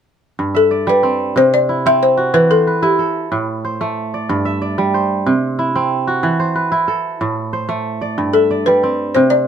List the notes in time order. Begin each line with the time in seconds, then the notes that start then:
0.39 G2
0.55 A4 E5
0.71 D5
0.87 G3 B4
1.03 C4
1.36 C3 C5
1.54 D5
1.69 E4
1.86 C4 E5
2.03 C5
2.17 F#4
2.34 E3 B4
2.50 A4 C5
2.67 B4
2.82 E4 G4
2.99 A4
3.32 A2
3.65 C5
3.81 A3
4.14 D5
4.29 G2
4.45 E5
4.62 D5
4.78 G3
4.94 C5
5.26 C3
5.59 E4
5.76 C4
6.07 F#4
6.23 E3
6.40 C5
6.55 B4
6.72 E4
6.88 A4
7.21 A2
7.53 C5
7.69 A3
8.01 D5
8.18 G2
8.33 A4 E5
8.51 D5
8.66 G3 B4
8.83 C4
9.15 C3 C5
9.30 D5